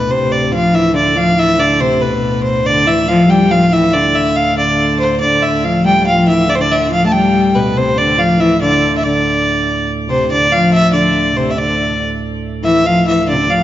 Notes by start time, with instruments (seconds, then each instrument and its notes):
Already playing: fiddle B4
0.09 pipe organ D2 A2, viola da gamba C3, fiddle C5
0.32 fiddle D5
0.52 viola da gamba F3, fiddle F5
0.73 viola da gamba E3, fiddle E5
0.94 viola da gamba D3, fiddle D5
1.15 viola da gamba F3, fiddle F5
1.37 viola da gamba E3, fiddle E5
1.59 viola da gamba D3, fiddle D5
1.80 viola da gamba C3, fiddle C5
1.95 viola da gamba C3
2.01 viola da gamba B2, fiddle B4
2.43 fiddle C5
2.65 viola da gamba D3, fiddle D5
2.87 viola da gamba E3, fiddle E5
3.08 viola da gamba F3, fiddle F5
3.29 viola da gamba G3, fiddle G5
3.51 viola da gamba F3, fiddle F5
3.72 viola da gamba E3, fiddle E5
3.94 viola da gamba D3, fiddle D5
4.15 fiddle E5
4.36 fiddle F5
4.57 viola da gamba D3, fiddle D5
5.00 fiddle C5
5.21 pipe organ D2 A2, viola da gamba D3, fiddle D5
5.42 fiddle E5
5.64 viola da gamba F3, fiddle F5
5.85 viola da gamba G3, fiddle G5
6.01 viola da gamba G3
6.05 viola da gamba F3, fiddle F5
6.27 viola da gamba E3, fiddle E5
6.47 viola da gamba D3, fiddle D5
6.55 viola da gamba D3, fiddle C5
6.61 fiddle D5
6.71 fiddle E5
6.90 viola da gamba F3, fiddle F5
7.05 viola da gamba A3, fiddle A5
7.12 viola da gamba G3, fiddle G5
7.55 viola da gamba B2, fiddle B4
7.76 viola da gamba C3, fiddle C5
7.97 viola da gamba D3, fiddle D5
8.17 viola da gamba F3, fiddle F5
8.39 viola da gamba E3, fiddle E5
8.61 viola da gamba D3, fiddle D5
8.97 fiddle E5
9.03 viola da gamba D3, fiddle D5
10.08 viola da gamba C3, fiddle C5
10.30 pipe organ D2 A2, viola da gamba D3, fiddle D5
10.52 viola da gamba F3, fiddle F5
10.74 fiddle E5
10.93 viola da gamba D3, fiddle D5
11.36 viola da gamba C3, fiddle C5
11.51 fiddle E5
11.58 viola da gamba D3, fiddle D5
12.63 viola da gamba E3, fiddle E5
12.84 viola da gamba F3, fiddle F5
13.05 viola da gamba E3, fiddle E5
13.27 viola da gamba D3, fiddle D5
13.33 viola da gamba C3 D3
13.49 viola da gamba F3, fiddle F5